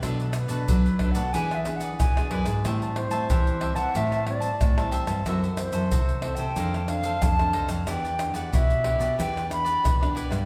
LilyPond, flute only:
\new Staff \with { instrumentName = "Flute" } { \time 4/4 \key e \minor \tempo 4 = 92 r8 b'8~ \tuplet 3/2 { b'4 fis''8 gis''8 e''8 fis''8 } gis''8. r16 | r8 c''8~ \tuplet 3/2 { c''4 fis''8 } e''8 d''4 r8 | r8 c''8~ \tuplet 3/2 { c''4 g''8~ } g''8 f''8 a''8. r16 | g''8. fis''16 e''4 g''8 b''4 r8 | }